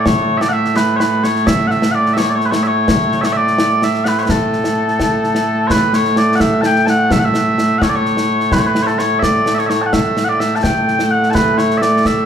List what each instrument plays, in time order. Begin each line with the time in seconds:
Already playing: bagpipes A2 A3
0.05 bagpipes C#5, concert bass drum, snare
0.37 bagpipes D5 E5, snare
0.49 bagpipes F#5
0.53 bagpipes E5
0.65 snare
0.76 bagpipes B4, snare
0.96 bagpipes B4 C#5, snare
1.24 bagpipes C#5, snare
1.35 snare
1.47 bagpipes E5, concert bass drum, snare
1.67 bagpipes E5 F#5, snare
1.82 snare
1.91 bagpipes D5 F#5
2.06 snare
2.13 bagpipes E5, snare
2.17 bagpipes C#5
2.29 bagpipes D5
2.35 bagpipes C#5
2.41 snare
2.46 bagpipes B4
2.51 bagpipes C#5, snare
2.63 bagpipes E5
2.67 bagpipes C#5
2.88 concert bass drum, snare
3.12 snare
3.21 bagpipes C#5 E5, snare
3.32 bagpipes E5
3.37 bagpipes D5
3.47 snare
3.58 snare
3.82 bagpipes E5, snare
3.94 snare
4.04 bagpipes B4 F#5, snare
4.17 bagpipes C#5, snare
4.23 bagpipes B4
4.29 bagpipes A4, concert bass drum, snare
4.53 snare
4.64 snare
4.88 snare
5.00 concert bass drum, snare
5.23 snare
5.35 snare
5.67 bagpipes B4 C#5, concert bass drum, snare
5.93 bagpipes C#5, snare
6.05 snare
6.16 bagpipes D5, snare
6.35 bagpipes F#5
6.40 bagpipes E5, concert bass drum, snare
6.61 bagpipes A5, snare
6.66 bagpipes G5
6.75 snare
6.86 bagpipes F#5 A5, snare
7.11 bagpipes E5, concert bass drum, snare
7.19 bagpipes F#5
7.25 bagpipes E5
7.34 snare
7.58 snare
7.79 bagpipes C#5 F#5, concert bass drum, snare
7.89 bagpipes D5
7.95 bagpipes C#5
8.05 snare
8.17 snare
8.40 snare
8.52 bagpipes B4, concert bass drum, snare
8.59 bagpipes C#5
8.66 bagpipes B4
8.75 snare
8.83 bagpipes C#5
8.87 bagpipes A4, snare
8.99 bagpipes C#5, snare
9.19 bagpipes D5 E5, concert bass drum, snare
9.46 snare
9.54 bagpipes C#5 E5, snare
9.66 bagpipes C#5 E5, snare
9.82 bagpipes A5
9.86 bagpipes F#5
9.93 bagpipes E5, concert bass drum, snare
10.17 snare
10.24 bagpipes F#5
10.29 bagpipes D5
10.40 bagpipes E5, snare
10.56 bagpipes A5
10.63 bagpipes G5, concert bass drum, snare
10.88 snare
10.99 snare
11.11 bagpipes F#5
11.23 snare
11.30 bagpipes A5
11.34 bagpipes B4, concert bass drum, snare
11.58 bagpipes C#5, snare
11.70 snare
11.77 bagpipes E5
11.82 bagpipes D5, snare
12.05 bagpipes E5, concert bass drum, snare